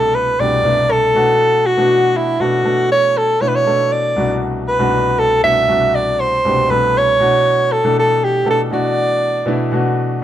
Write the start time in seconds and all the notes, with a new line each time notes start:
Already playing: C2 B2 E3 A3 D4 E4 A4
0.15 B4
0.39 C2 B2 E3 A3 D4 G4 D5
0.63 C2 B2 E3 A3 D4 E4
0.91 A4
1.14 B2 E3 A3 D4 F#4
1.66 F#4
1.77 B2 E3 A3 D4 F#4
2.17 E4
2.40 B2 E3 A3 D4 F#4 A4
2.64 B2 E3 A3 D4 A4
2.92 C#5
3.17 A4
3.41 B2 E3 A3 D4 E4 C#5
3.48 B4
3.55 C#5
3.66 B2 E3 A3 D4 A4
3.92 D5
4.16 C2 B2 E3 A3 D4 F#4
4.68 B4
4.79 C2 B2 E3 A3 D4 F#4
5.19 A4
5.43 C2 B2 E3 A3 D4 F#4 E5
5.68 C2 B2 E3 A3 D4 F#4
5.95 D5
6.20 C5
6.45 C2 B2 E3 A3 D4 G4
6.69 C2 B2 E3 A3 D4 A4 B4
6.98 C#5
7.20 B2 E3 A3 D4 F#4
7.72 A4
7.84 B2 E3 A3 D4 A4
7.99 A4
8.24 G4
8.45 B2 E3 A3 D4 A4
8.50 A4
8.71 B2 E3 A3 D4 F#4 D5
9.46 B2 E3 A3 D4 E4
9.72 B2 E3 A3 D4 F#4